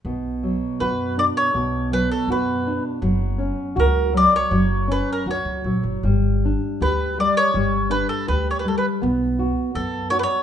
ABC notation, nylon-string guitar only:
X:1
M:2/4
L:1/8
Q:1/4=81
K:Bm
V:1 name="Nylon-string guitar"
B,, F, F D | B,, F, F D | F, C F F, | F, C F F, |
G, D G G, | G, D G G, | B, F B, F |]